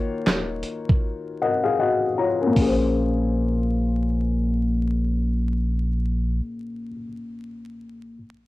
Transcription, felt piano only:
Already playing: D#3 A#3 F4 F#4 C#5
1.42 A#4 D#5 F#5
1.64 G#4 F5
1.79 F#4 D#5 F#5
2.18 F4 C#5 A#5
2.41 C#4 A#4
2.47 A#2
2.52 A#3
2.57 C#4
2.62 G#4
2.67 C5

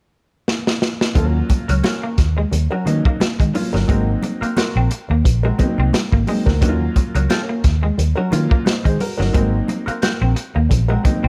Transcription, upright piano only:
1.14 F#3 A#3 C#4 F4
2.85 F#3 A#3 C#4 D#4
3.54 F#3 A#3 C#4 F4
3.88 F#3 A#3 C4 D#4
5.58 F#3 A#3 C4 D#4
6.27 F#3 A#3 C4 D#4
6.61 F#3 A#3 C#4 D#4
6.69 F4
8.31 F#3 A#3 C#4 F4
8.67 C5 D#5
8.86 G#4 C5
9.01 F#4 A#4
9.20 D#4 F#4
9.34 F#3 A#3 C4 D#4
11.04 F#3 A#3 C4 D#4

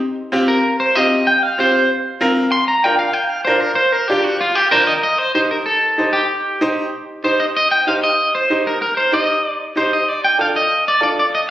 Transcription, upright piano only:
0.32 C4 F4 G4
0.96 C4 F4 G4
1.58 C4 F4 G4
2.21 C4 F4 A#4
2.85 D4 F4 A#4
3.47 D4 F4 A#4
4.10 D4 F4 G4
4.72 D4 F4 A#4
5.35 D#4 G4 C5
5.98 D#4 G4 C5
6.61 D#4 G4 C5
7.24 D#4 G4 C5
7.87 D#4 G4 C5
8.50 D#4 G4 C5
9.12 D#4 G4 C5
9.76 D#4 G4 C5
10.38 D4 F4 A4
11.01 D4 F4 A4

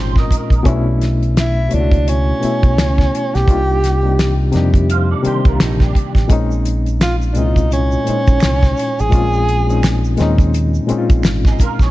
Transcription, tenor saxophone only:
1.39 E4
1.74 D4
2.09 C#4
3.35 G4
7.02 F4
7.33 D4
7.38 D#4
7.73 C#4
9.00 G#4

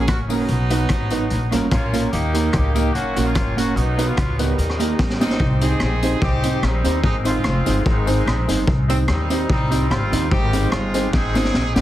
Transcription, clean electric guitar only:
0.29 A#3 C#4 F#4 A#4
0.70 B3 D#4 F#4 B4
1.11 B3 D#4 F#4 B4
1.51 A#3 C#4 F4 A#4
1.93 A#3 C#4 F4 A#4
2.33 A#3 D#4 G4 A#4
2.75 A#3 D#4 G4 A#4
3.16 A#3 C#4 F#4 A#4
3.36 muted clean electric guitar stroke
3.57 A#3 C#4 F#4 A#4
3.98 B3 D#4 F#4 B4
4.39 B3 D#4 F#4 B4
4.79 A#3 D#4 G4 A#4
5.21 A#3 D#4 G4 A#4
5.62 C4 D#4 G4 C5
6.02 C4 D#4 G4 C5
6.44 C4 D#4 G4 C5
6.63 muted clean electric guitar stroke
6.84 C4 D#4 G4 C5
7.25 C4 D#4 G#4 C5
7.66 C4 D#4 G#4 C5
8.08 C4 D#4 G#4 C5
8.48 C4 D#4 G#4 C5
8.89 C4 D#4 G4 C5
9.30 C4 D#4 G4 C5
9.71 C4 D#4 G4 C5
9.90 muted clean electric guitar stroke
10.11 C4 D#4 G4 C5
10.53 C4 D#4 G#4 C5
10.94 C4 D#4 G#4 C5
11.35 C4 D#4 G#4 C5
11.76 C4 D#4 G#4 C5

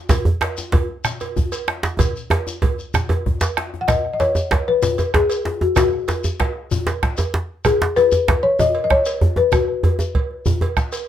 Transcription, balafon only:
3.81 F#5
3.88 D#5
4.13 D#5
4.20 C#5
4.68 B4
5.14 G#4
5.62 F#4
5.77 F#4
7.65 G#4
7.96 B4
8.43 C#5
8.60 D#5
8.84 D#5
8.91 C#5
9.37 B4
9.53 F#4

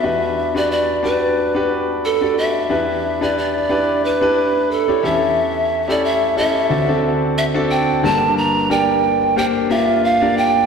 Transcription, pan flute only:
Already playing: E5
0.57 D5
0.71 D5
1.05 B4
2.05 A4
2.38 E5
3.23 D5
3.38 D5
4.05 B4
4.71 A4
5.05 E5
5.90 D5
6.05 E5
6.38 E5
7.38 E5
7.71 G5
8.05 A5
8.38 A#5
8.71 G5
9.38 G5
9.71 E5
10.04 F5
10.38 G5

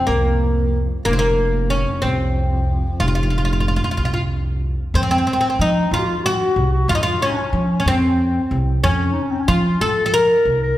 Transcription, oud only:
0.07 A#3
1.05 A#3
1.13 C4
1.19 A#3
1.70 C#4
2.02 C4
3.00 F4
3.08 F4
3.15 F4
3.23 F4
3.30 F4
3.38 F4
3.45 F4
3.53 F4
3.60 F4
3.68 F4
3.76 F4
3.84 F4
3.91 F4
3.97 F4
4.05 F4
4.14 F4
4.95 C4
5.03 C4
5.11 C4
5.18 C4
5.27 C4
5.33 C4
5.41 C4
5.50 C4
5.61 D#4
5.94 F4
6.26 F#4
6.89 F4
6.95 D#4
7.03 F4
7.22 C#4
7.80 C#4
7.88 C4
8.84 C#4
9.48 F4
9.81 A4
10.06 A4
10.14 A#4

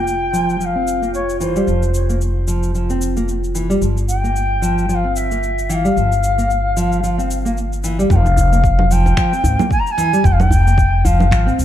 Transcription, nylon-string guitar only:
0.33 F3
0.60 F3
0.75 C4
1.02 A#3
1.40 E3
1.56 G3
1.67 F3
2.09 A#3
2.47 F3
2.75 F3
2.90 C4
3.17 A#3
3.55 E3
3.70 G3
3.81 F3
4.24 A#3
4.62 F3
4.89 F3
5.04 C4
5.31 A#3
5.69 E3
5.85 G3
5.96 F3
6.38 A#3
6.77 F3
7.03 F3
7.18 C4
7.45 A#3
7.84 E3
7.99 G3
8.11 F3
8.52 A#3
8.91 F3
9.17 F3
9.33 C4
9.59 A#3
9.98 E3
10.13 G3
10.24 F3
10.67 A#3
11.05 F3
11.31 F3
11.46 C4

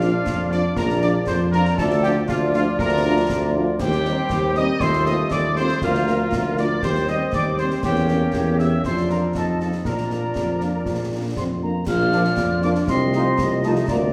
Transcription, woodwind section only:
Already playing: F4 D5
0.78 F4 D5
1.79 F4 D5
2.30 F4 D5
2.80 F4 D5
3.80 G4 C5
4.81 F4 A4
5.82 F4 A#4
6.83 G4 C5
7.85 A#4 C#5
8.86 F4 D5
9.37 F4 D#5
9.87 F4 D5
11.87 F4 D5
12.88 F4 D#5
13.88 F4 D5

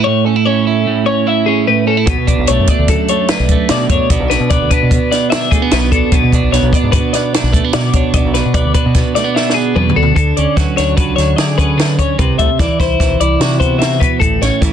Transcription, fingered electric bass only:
2.07 B1
2.18 B2
2.39 B1
2.49 B1
2.59 F#2
2.79 D2
3.40 B1
3.70 B2
3.89 F#2
4.10 B1
4.20 B1
4.40 B2
4.51 B1
4.62 D2
4.83 B2
5.72 B1
6.12 B1
6.23 B2
6.43 B1
6.53 B1
6.62 B1
6.83 G#2
7.43 B1
7.74 B2
7.94 B1
8.14 B1
8.25 B1
8.46 B2
8.54 B1
8.65 D2
8.86 B2
9.76 E2
9.96 D2
10.16 D2
10.38 D2
10.57 D2
10.78 D2
10.97 C#2
11.18 D2
11.38 D3
12.19 C2
12.39 C2
12.59 C2
12.79 C2
13.00 B1
13.20 C2
13.40 C3
14.21 A1
14.41 A1
14.62 A1

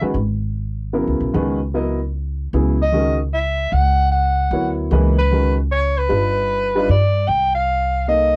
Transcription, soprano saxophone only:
2.82 D#5
3.34 E5
3.73 F#5
4.12 F#5
5.18 B4
5.72 C#5
5.98 B4
6.90 D5
7.28 G5
7.55 F5
8.08 D#5

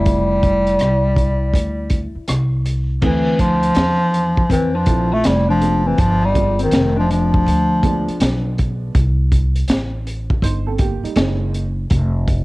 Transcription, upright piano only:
Already playing: E3 G3 A3 C4 E4
3.02 D3 A3 C4 E4
4.87 F3 A3 C4 E4
5.61 F3 G#3 B3 D4
6.34 F3 G#3 B3 D4
7.83 F3 G#3 B3 D4
10.43 D#4 C5
10.67 C4 A4
10.80 A#3 G4
11.04 G3 D#4
11.16 G#3 A#3 C#4 D#4

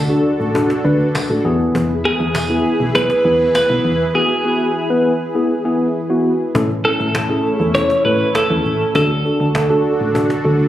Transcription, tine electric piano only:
0.09 D4 F#4 A4
0.54 D4 F#4 A4
0.84 D4 F#4 B4
1.29 D4 F#4 A4
1.45 B3 E4 G#4
2.05 B3 E4 G#4
2.50 B3 E4 G#4
2.95 B3 E4 G#4
3.25 B3 E4 G#4
3.70 B3 E4 B4
4.15 B3 E4 F#4
4.45 B3 E4 F#4
4.90 B3 E4 B4
5.35 B3 E4 G#4
5.65 B3 E4 G#4
6.10 B3 E4 F#4
6.55 C#4 E4 A4
6.85 C#4 E4 A4
7.29 C#4 E4 G#4
7.75 C#4 E4 A4
8.05 C#4 E4 A4
8.50 C#4 E4 A4
8.95 D4 F#4 A4
9.25 D4 F#4 A4
9.69 D4 F#4 A4
10.14 D4 F#4 A4
10.44 D4 F#4 A4

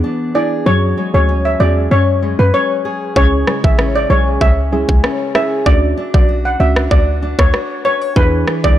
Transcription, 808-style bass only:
0.66 F#2
1.14 D2
1.60 E2
1.91 F#2
2.39 F#2
3.16 C#2
3.64 A1
4.10 B1
4.41 C#2
4.89 C#2
5.66 D2
6.14 B1
6.60 C#2
6.91 D2
7.39 D2
8.16 E2
8.64 C#2

